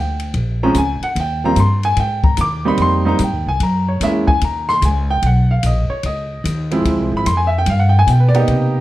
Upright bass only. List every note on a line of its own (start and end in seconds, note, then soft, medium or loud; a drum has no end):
0.00 0.33 D2 medium
0.34 0.74 A#1 medium
0.75 1.00 C#2 medium
1.01 muted upright bass stroke soft
1.15 1.55 D#2 medium
1.56 1.96 G2 medium
1.96 2.37 G#2 medium
2.38 2.77 D#2 medium
2.78 3.18 F2 medium
3.19 3.33 G2 medium
3.33 3.46 D#2 medium
3.47 3.59 C2 medium
3.60 4.00 F#2 medium
4.00 4.40 E2 medium
4.42 4.81 D#2 medium
4.82 5.22 C#2 medium
5.22 5.62 B1 medium
5.63 5.88 A#1 medium
5.89 muted upright bass stroke soft
6.03 6.43 C#2 medium
6.44 6.84 D#2 loud
6.85 6.98 D2 medium
6.98 7.11 C2 medium
7.12 7.25 G#1 medium
7.26 7.65 F2 medium
7.66 8.06 G2 loud
8.07 8.47 B2 medium
8.48 8.81 C3 medium